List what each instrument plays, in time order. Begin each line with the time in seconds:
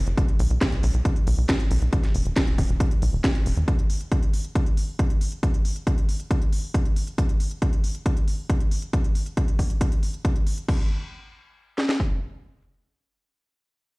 0.07 analog synth bass F#1, closed hi-hat
0.17 kick, closed hi-hat
0.28 closed hi-hat
0.39 analog synth bass B1, open hi-hat
0.50 analog synth bass B1, closed hi-hat
0.61 kick, snare, closed hi-hat
0.72 analog synth bass B1, closed hi-hat
0.83 analog synth bass B1, open hi-hat
0.94 analog synth bass B1, closed hi-hat
1.05 kick, closed hi-hat
1.16 closed hi-hat
1.27 analog synth bass B1, open hi-hat
1.38 analog synth bass B1
1.49 kick, snare, closed hi-hat
1.60 closed hi-hat
1.71 analog synth bass B1, open hi-hat
1.82 analog synth bass B1, closed hi-hat
1.93 kick, closed hi-hat
2.04 snare, closed hi-hat
2.14 analog synth bass E1, open hi-hat
2.25 analog synth bass E1, closed hi-hat
2.36 kick, snare, closed hi-hat
2.47 analog synth bass E1, closed hi-hat
2.58 analog synth bass E1, kick, open hi-hat
2.69 analog synth bass E1, closed hi-hat
2.80 kick, closed hi-hat
2.91 closed hi-hat
3.02 analog synth bass B1, open hi-hat
3.13 analog synth bass E1
3.24 kick, snare, closed hi-hat
3.35 closed hi-hat
3.46 analog synth bass E1, open hi-hat
3.57 analog synth bass E2, closed hi-hat
3.68 kick, closed hi-hat
3.79 closed hi-hat
3.90 open hi-hat
4.01 closed hi-hat
4.12 kick, closed hi-hat
4.23 closed hi-hat
4.33 open hi-hat
4.44 closed hi-hat
4.55 kick, closed hi-hat
4.66 closed hi-hat
4.77 open hi-hat
4.99 kick, closed hi-hat
5.10 closed hi-hat
5.21 open hi-hat
5.32 closed hi-hat
5.43 kick, closed hi-hat
5.54 closed hi-hat
5.65 open hi-hat
5.76 closed hi-hat
5.87 kick, closed hi-hat
5.98 closed hi-hat
6.09 open hi-hat
6.20 closed hi-hat
6.31 kick, closed hi-hat
6.42 closed hi-hat
6.53 open hi-hat
6.74 kick, closed hi-hat
6.85 closed hi-hat
6.96 open hi-hat
7.07 closed hi-hat
7.18 kick, closed hi-hat
7.29 closed hi-hat
7.40 open hi-hat
7.51 closed hi-hat
7.62 kick, closed hi-hat
7.73 closed hi-hat
7.84 open hi-hat
7.95 closed hi-hat
8.06 kick, closed hi-hat
8.17 closed hi-hat
8.28 open hi-hat
8.50 kick, closed hi-hat
8.60 closed hi-hat
8.71 open hi-hat
8.82 closed hi-hat
8.93 kick, closed hi-hat
9.04 closed hi-hat
9.15 open hi-hat
9.26 closed hi-hat
9.37 kick, closed hi-hat
9.48 closed hi-hat
9.59 kick, open hi-hat
9.70 closed hi-hat
9.81 kick, closed hi-hat
9.92 closed hi-hat
10.03 open hi-hat
10.14 closed hi-hat
10.25 kick, closed hi-hat
10.36 closed hi-hat
10.47 open hi-hat
10.58 closed hi-hat
10.68 kick, crash
11.78 snare
11.89 snare
12.00 kick